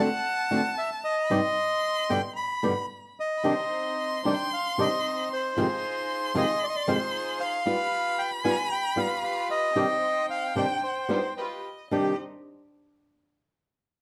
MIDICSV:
0, 0, Header, 1, 5, 480
1, 0, Start_track
1, 0, Key_signature, -3, "minor"
1, 0, Tempo, 531915
1, 1177, Time_signature, 4, 2, 24, 8
1, 4549, Tempo, 524934
1, 8869, Tempo, 533808
1, 12694, End_track
2, 0, Start_track
2, 0, Title_t, "Violin"
2, 0, Program_c, 0, 40
2, 0, Note_on_c, 0, 81, 122
2, 1174, Note_on_c, 0, 84, 122
2, 1188, Note_off_c, 0, 81, 0
2, 2125, Note_off_c, 0, 84, 0
2, 2133, Note_on_c, 0, 83, 89
2, 2823, Note_off_c, 0, 83, 0
2, 3046, Note_on_c, 0, 83, 69
2, 3106, Note_on_c, 0, 84, 127
2, 3119, Note_off_c, 0, 83, 0
2, 5023, Note_off_c, 0, 84, 0
2, 5028, Note_on_c, 0, 84, 123
2, 6949, Note_on_c, 0, 83, 127
2, 6963, Note_off_c, 0, 84, 0
2, 8853, Note_on_c, 0, 79, 103
2, 8866, Note_off_c, 0, 83, 0
2, 10320, Note_on_c, 0, 75, 79
2, 10334, Note_off_c, 0, 79, 0
2, 10790, Note_off_c, 0, 75, 0
2, 10796, Note_on_c, 0, 75, 73
2, 11020, Note_off_c, 0, 75, 0
2, 12694, End_track
3, 0, Start_track
3, 0, Title_t, "Bandoneon"
3, 0, Program_c, 1, 23
3, 0, Note_on_c, 1, 78, 107
3, 672, Note_off_c, 1, 78, 0
3, 705, Note_on_c, 1, 76, 99
3, 811, Note_off_c, 1, 76, 0
3, 942, Note_on_c, 1, 75, 102
3, 1895, Note_on_c, 1, 79, 95
3, 1916, Note_off_c, 1, 75, 0
3, 2001, Note_off_c, 1, 79, 0
3, 2134, Note_on_c, 1, 83, 102
3, 2582, Note_off_c, 1, 83, 0
3, 2886, Note_on_c, 1, 75, 95
3, 3806, Note_off_c, 1, 75, 0
3, 3853, Note_on_c, 1, 79, 89
3, 4065, Note_off_c, 1, 79, 0
3, 4090, Note_on_c, 1, 77, 99
3, 4303, Note_off_c, 1, 77, 0
3, 4338, Note_on_c, 1, 75, 88
3, 4771, Note_off_c, 1, 75, 0
3, 4813, Note_on_c, 1, 72, 95
3, 5727, Note_off_c, 1, 72, 0
3, 5767, Note_on_c, 1, 75, 104
3, 6005, Note_on_c, 1, 74, 90
3, 6006, Note_off_c, 1, 75, 0
3, 6029, Note_off_c, 1, 74, 0
3, 6061, Note_on_c, 1, 75, 84
3, 6116, Note_off_c, 1, 75, 0
3, 6122, Note_on_c, 1, 74, 89
3, 6228, Note_off_c, 1, 74, 0
3, 6228, Note_on_c, 1, 72, 100
3, 6710, Note_on_c, 1, 77, 125
3, 6721, Note_off_c, 1, 72, 0
3, 7426, Note_on_c, 1, 79, 100
3, 7448, Note_off_c, 1, 77, 0
3, 7534, Note_off_c, 1, 79, 0
3, 7659, Note_on_c, 1, 80, 117
3, 7884, Note_off_c, 1, 80, 0
3, 7909, Note_on_c, 1, 79, 102
3, 8147, Note_on_c, 1, 77, 96
3, 8153, Note_off_c, 1, 79, 0
3, 8375, Note_off_c, 1, 77, 0
3, 8388, Note_on_c, 1, 77, 109
3, 8611, Note_off_c, 1, 77, 0
3, 8634, Note_on_c, 1, 75, 112
3, 9313, Note_off_c, 1, 75, 0
3, 9352, Note_on_c, 1, 77, 105
3, 9571, Note_off_c, 1, 77, 0
3, 9592, Note_on_c, 1, 79, 93
3, 9812, Note_off_c, 1, 79, 0
3, 9830, Note_on_c, 1, 72, 80
3, 10282, Note_off_c, 1, 72, 0
3, 10811, Note_on_c, 1, 67, 89
3, 11029, Note_off_c, 1, 67, 0
3, 12694, End_track
4, 0, Start_track
4, 0, Title_t, "String section"
4, 0, Program_c, 2, 48
4, 3102, Note_on_c, 2, 60, 89
4, 3103, Note_on_c, 2, 63, 80
4, 3106, Note_on_c, 2, 72, 93
4, 3792, Note_off_c, 2, 60, 0
4, 3792, Note_off_c, 2, 63, 0
4, 3794, Note_off_c, 2, 72, 0
4, 3823, Note_on_c, 2, 62, 81
4, 3828, Note_on_c, 2, 63, 75
4, 3828, Note_on_c, 2, 72, 84
4, 4028, Note_off_c, 2, 62, 0
4, 4030, Note_off_c, 2, 63, 0
4, 4030, Note_off_c, 2, 72, 0
4, 4307, Note_on_c, 2, 60, 88
4, 4308, Note_on_c, 2, 63, 81
4, 4313, Note_on_c, 2, 72, 93
4, 4993, Note_off_c, 2, 60, 0
4, 4993, Note_off_c, 2, 63, 0
4, 4996, Note_off_c, 2, 72, 0
4, 5031, Note_on_c, 2, 63, 86
4, 5031, Note_on_c, 2, 65, 84
4, 5035, Note_on_c, 2, 68, 99
4, 5716, Note_off_c, 2, 63, 0
4, 5716, Note_off_c, 2, 65, 0
4, 5718, Note_off_c, 2, 68, 0
4, 5750, Note_on_c, 2, 63, 74
4, 5753, Note_on_c, 2, 68, 92
4, 5754, Note_on_c, 2, 65, 76
4, 5952, Note_off_c, 2, 63, 0
4, 5954, Note_off_c, 2, 65, 0
4, 5954, Note_off_c, 2, 68, 0
4, 6225, Note_on_c, 2, 63, 86
4, 6226, Note_on_c, 2, 65, 86
4, 6228, Note_on_c, 2, 68, 102
4, 6908, Note_off_c, 2, 63, 0
4, 6909, Note_off_c, 2, 65, 0
4, 6910, Note_off_c, 2, 68, 0
4, 6940, Note_on_c, 2, 67, 77
4, 6941, Note_on_c, 2, 65, 86
4, 6943, Note_on_c, 2, 71, 96
4, 7626, Note_off_c, 2, 65, 0
4, 7626, Note_off_c, 2, 67, 0
4, 7627, Note_off_c, 2, 71, 0
4, 7659, Note_on_c, 2, 65, 78
4, 7665, Note_on_c, 2, 67, 72
4, 7665, Note_on_c, 2, 71, 92
4, 7863, Note_off_c, 2, 65, 0
4, 7866, Note_off_c, 2, 67, 0
4, 7866, Note_off_c, 2, 71, 0
4, 8132, Note_on_c, 2, 65, 91
4, 8134, Note_on_c, 2, 67, 89
4, 8137, Note_on_c, 2, 71, 104
4, 8826, Note_off_c, 2, 65, 0
4, 8827, Note_off_c, 2, 67, 0
4, 8829, Note_off_c, 2, 71, 0
4, 8858, Note_on_c, 2, 60, 80
4, 8861, Note_on_c, 2, 63, 88
4, 8864, Note_on_c, 2, 72, 102
4, 9544, Note_off_c, 2, 60, 0
4, 9545, Note_off_c, 2, 63, 0
4, 9547, Note_off_c, 2, 72, 0
4, 9579, Note_on_c, 2, 62, 79
4, 9580, Note_on_c, 2, 63, 72
4, 9584, Note_on_c, 2, 72, 86
4, 9784, Note_off_c, 2, 62, 0
4, 9784, Note_off_c, 2, 63, 0
4, 9786, Note_off_c, 2, 72, 0
4, 10062, Note_on_c, 2, 62, 82
4, 10064, Note_on_c, 2, 63, 77
4, 10066, Note_on_c, 2, 72, 99
4, 10271, Note_off_c, 2, 62, 0
4, 10272, Note_off_c, 2, 63, 0
4, 10273, Note_off_c, 2, 72, 0
4, 10313, Note_on_c, 2, 65, 90
4, 10313, Note_on_c, 2, 67, 80
4, 10317, Note_on_c, 2, 71, 91
4, 10520, Note_off_c, 2, 65, 0
4, 10520, Note_off_c, 2, 67, 0
4, 10522, Note_off_c, 2, 71, 0
4, 10807, Note_on_c, 2, 63, 50
4, 10807, Note_on_c, 2, 72, 61
4, 10808, Note_on_c, 2, 62, 55
4, 11004, Note_off_c, 2, 63, 0
4, 11004, Note_off_c, 2, 72, 0
4, 11005, Note_off_c, 2, 62, 0
4, 12694, End_track
5, 0, Start_track
5, 0, Title_t, "Nylon-string guitar"
5, 0, Program_c, 3, 24
5, 458, Note_on_c, 3, 50, 94
5, 462, Note_on_c, 3, 57, 103
5, 465, Note_on_c, 3, 60, 102
5, 467, Note_on_c, 3, 66, 96
5, 542, Note_off_c, 3, 50, 0
5, 543, Note_off_c, 3, 57, 0
5, 545, Note_off_c, 3, 60, 0
5, 546, Note_off_c, 3, 66, 0
5, 1174, Note_on_c, 3, 48, 88
5, 1175, Note_on_c, 3, 43, 94
5, 1179, Note_on_c, 3, 63, 98
5, 1180, Note_on_c, 3, 55, 104
5, 1180, Note_on_c, 3, 60, 99
5, 1182, Note_on_c, 3, 67, 96
5, 1255, Note_off_c, 3, 43, 0
5, 1255, Note_off_c, 3, 48, 0
5, 1257, Note_off_c, 3, 60, 0
5, 1257, Note_off_c, 3, 63, 0
5, 1258, Note_off_c, 3, 55, 0
5, 1258, Note_off_c, 3, 67, 0
5, 1892, Note_on_c, 3, 47, 86
5, 1896, Note_on_c, 3, 43, 85
5, 1896, Note_on_c, 3, 50, 89
5, 1899, Note_on_c, 3, 59, 90
5, 1900, Note_on_c, 3, 55, 87
5, 1901, Note_on_c, 3, 67, 99
5, 1970, Note_off_c, 3, 47, 0
5, 1972, Note_off_c, 3, 43, 0
5, 1972, Note_off_c, 3, 50, 0
5, 1973, Note_off_c, 3, 55, 0
5, 1973, Note_off_c, 3, 59, 0
5, 1974, Note_off_c, 3, 67, 0
5, 2373, Note_on_c, 3, 43, 82
5, 2373, Note_on_c, 3, 50, 95
5, 2378, Note_on_c, 3, 47, 87
5, 2378, Note_on_c, 3, 55, 90
5, 2382, Note_on_c, 3, 59, 104
5, 2382, Note_on_c, 3, 67, 101
5, 2452, Note_off_c, 3, 43, 0
5, 2452, Note_off_c, 3, 50, 0
5, 2454, Note_off_c, 3, 47, 0
5, 2455, Note_off_c, 3, 55, 0
5, 2456, Note_off_c, 3, 59, 0
5, 2456, Note_off_c, 3, 67, 0
5, 3101, Note_on_c, 3, 48, 92
5, 3105, Note_on_c, 3, 51, 100
5, 3107, Note_on_c, 3, 55, 85
5, 3110, Note_on_c, 3, 62, 96
5, 3111, Note_on_c, 3, 67, 91
5, 3182, Note_off_c, 3, 48, 0
5, 3184, Note_off_c, 3, 51, 0
5, 3185, Note_off_c, 3, 55, 0
5, 3186, Note_off_c, 3, 62, 0
5, 3187, Note_off_c, 3, 67, 0
5, 3837, Note_on_c, 3, 48, 87
5, 3837, Note_on_c, 3, 51, 84
5, 3842, Note_on_c, 3, 55, 93
5, 3842, Note_on_c, 3, 62, 99
5, 3845, Note_on_c, 3, 67, 94
5, 3913, Note_off_c, 3, 48, 0
5, 3913, Note_off_c, 3, 51, 0
5, 3916, Note_off_c, 3, 55, 0
5, 3916, Note_off_c, 3, 62, 0
5, 3917, Note_off_c, 3, 67, 0
5, 4315, Note_on_c, 3, 48, 98
5, 4315, Note_on_c, 3, 51, 97
5, 4318, Note_on_c, 3, 55, 101
5, 4322, Note_on_c, 3, 62, 108
5, 4324, Note_on_c, 3, 67, 100
5, 4392, Note_off_c, 3, 48, 0
5, 4392, Note_off_c, 3, 51, 0
5, 4394, Note_off_c, 3, 55, 0
5, 4396, Note_off_c, 3, 62, 0
5, 4397, Note_off_c, 3, 67, 0
5, 5030, Note_on_c, 3, 41, 97
5, 5037, Note_on_c, 3, 56, 90
5, 5038, Note_on_c, 3, 51, 102
5, 5040, Note_on_c, 3, 48, 100
5, 5040, Note_on_c, 3, 65, 101
5, 5041, Note_on_c, 3, 60, 99
5, 5111, Note_off_c, 3, 41, 0
5, 5115, Note_off_c, 3, 51, 0
5, 5115, Note_off_c, 3, 56, 0
5, 5116, Note_off_c, 3, 48, 0
5, 5116, Note_off_c, 3, 65, 0
5, 5117, Note_off_c, 3, 60, 0
5, 5742, Note_on_c, 3, 41, 93
5, 5744, Note_on_c, 3, 48, 104
5, 5748, Note_on_c, 3, 51, 106
5, 5753, Note_on_c, 3, 56, 97
5, 5753, Note_on_c, 3, 60, 96
5, 5754, Note_on_c, 3, 65, 91
5, 5828, Note_off_c, 3, 41, 0
5, 5828, Note_off_c, 3, 48, 0
5, 5830, Note_off_c, 3, 51, 0
5, 5833, Note_off_c, 3, 56, 0
5, 5833, Note_off_c, 3, 60, 0
5, 5833, Note_off_c, 3, 65, 0
5, 6228, Note_on_c, 3, 51, 109
5, 6229, Note_on_c, 3, 41, 97
5, 6230, Note_on_c, 3, 48, 96
5, 6234, Note_on_c, 3, 56, 97
5, 6234, Note_on_c, 3, 60, 104
5, 6236, Note_on_c, 3, 65, 106
5, 6310, Note_off_c, 3, 51, 0
5, 6311, Note_off_c, 3, 41, 0
5, 6311, Note_off_c, 3, 48, 0
5, 6313, Note_off_c, 3, 56, 0
5, 6313, Note_off_c, 3, 60, 0
5, 6314, Note_off_c, 3, 65, 0
5, 6940, Note_on_c, 3, 55, 85
5, 6946, Note_on_c, 3, 59, 101
5, 6950, Note_on_c, 3, 65, 112
5, 7024, Note_off_c, 3, 55, 0
5, 7027, Note_off_c, 3, 59, 0
5, 7029, Note_off_c, 3, 65, 0
5, 7662, Note_on_c, 3, 55, 97
5, 7663, Note_on_c, 3, 59, 105
5, 7669, Note_on_c, 3, 65, 115
5, 7744, Note_off_c, 3, 55, 0
5, 7745, Note_off_c, 3, 59, 0
5, 7748, Note_off_c, 3, 65, 0
5, 8132, Note_on_c, 3, 55, 99
5, 8141, Note_on_c, 3, 59, 88
5, 8143, Note_on_c, 3, 65, 100
5, 8218, Note_off_c, 3, 55, 0
5, 8223, Note_off_c, 3, 59, 0
5, 8224, Note_off_c, 3, 65, 0
5, 8861, Note_on_c, 3, 48, 95
5, 8862, Note_on_c, 3, 51, 94
5, 8865, Note_on_c, 3, 55, 104
5, 8868, Note_on_c, 3, 67, 99
5, 8871, Note_on_c, 3, 62, 94
5, 8945, Note_off_c, 3, 48, 0
5, 8945, Note_off_c, 3, 51, 0
5, 8947, Note_off_c, 3, 55, 0
5, 8948, Note_off_c, 3, 67, 0
5, 8949, Note_off_c, 3, 62, 0
5, 9579, Note_on_c, 3, 48, 85
5, 9588, Note_on_c, 3, 51, 91
5, 9588, Note_on_c, 3, 55, 82
5, 9588, Note_on_c, 3, 62, 97
5, 9590, Note_on_c, 3, 67, 91
5, 9662, Note_off_c, 3, 48, 0
5, 9667, Note_off_c, 3, 51, 0
5, 9667, Note_off_c, 3, 55, 0
5, 9667, Note_off_c, 3, 62, 0
5, 9668, Note_off_c, 3, 67, 0
5, 10057, Note_on_c, 3, 55, 95
5, 10064, Note_on_c, 3, 59, 98
5, 10068, Note_on_c, 3, 65, 93
5, 10144, Note_off_c, 3, 55, 0
5, 10148, Note_off_c, 3, 59, 0
5, 10150, Note_off_c, 3, 65, 0
5, 10801, Note_on_c, 3, 48, 82
5, 10801, Note_on_c, 3, 51, 83
5, 10807, Note_on_c, 3, 55, 94
5, 10809, Note_on_c, 3, 62, 100
5, 10812, Note_on_c, 3, 67, 94
5, 10992, Note_off_c, 3, 48, 0
5, 10992, Note_off_c, 3, 51, 0
5, 10995, Note_off_c, 3, 55, 0
5, 10996, Note_off_c, 3, 62, 0
5, 10998, Note_off_c, 3, 67, 0
5, 12694, End_track
0, 0, End_of_file